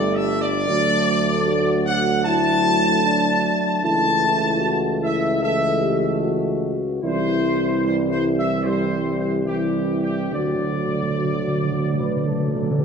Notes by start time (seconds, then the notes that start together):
Already playing: G1 G3 A3 D4 D5
0.14 E5
0.40 D5
0.68 D2 F#3 A3
1.46 F#4
1.86 F#5
2.24 F#3 A3 E4 A5
3.05 D4
3.83 C#2 E3 A3 E4 A5
4.61 F#4
5.02 E4 E5
5.42 E3 A3 A4 E5
5.81 G4
6.22 F#4
7.03 C2 E3 G3 E4 C5
7.84 E3 G3 C5
8.11 C5
8.38 E5
8.64 E3 G3 G4 C5
9.19 C5
9.45 E3 G3 E4 G4
10.03 G4
10.32 D2 D3 F#3 F#4 D5
10.40 D3
10.47 D3
10.63 D3
10.72 D3
10.87 D3
10.95 D3
11.03 D3
11.10 D3
11.16 D3 F#4
11.25 D3
11.48 D3
11.56 D3
11.63 D3
11.71 D3
11.78 D3
11.86 D3
11.93 D3
11.98 D3 B4
12.08 D3
12.16 D3
12.24 D3 A4
12.32 D3
12.40 D3
12.48 D3
12.54 D3 A4
12.62 D3
12.71 D3
12.78 D3